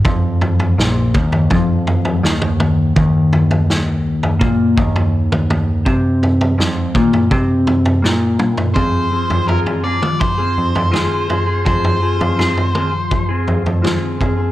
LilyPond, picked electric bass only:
\new Staff \with { instrumentName = "Picked electric bass" } { \clef bass \time 4/4 \key f \minor \tempo 4 = 83 f,4 bes,,8 ees,8 f,4 ees,4 | ees,2 bes,8 ees,4. | c4 f,8 bes,8 c4 bes,4 | f,8 r16 f,8 r4 r16 f,16 f,8 r8. |
f,8 r16 f,8 r4 r16 f,16 f,8 r8. | }